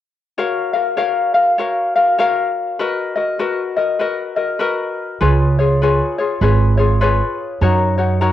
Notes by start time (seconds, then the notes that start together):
0.38 F#4 A#4 C#5 F5
0.73 F#4 A#4 F5
0.97 F#4 A#4 C#5 F5
1.34 F#4 A#4 F5
1.58 F#4 A#4 C#5 F5
1.96 F#4 A#4 F5
2.18 F#4 A#4 C#5 F5
2.79 F#4 A#4 B4 D#5
3.16 F#4 A#4 D#5
3.39 F#4 A#4 B4 D#5
3.77 F#4 A#4 D#5
3.99 F#4 A#4 B4 D#5
4.36 F#4 A#4 D#5
4.59 F#4 A#4 B4 D#5
5.21 C#2 F4 G#4 B4 C#5
5.59 F4 G#4 C#5
5.82 F4 G#4 B4 C#5
6.18 F4 G#4 C#5
6.41 G#1 F4 G#4 B4 C#5
6.78 F4 G#4 C#5
7.01 F4 G#4 B4 C#5
7.61 F#2 D#4 F#4 A#4 C#5
7.98 D#4 F#4 C#5
8.21 D#4 F#4 A#4 C#5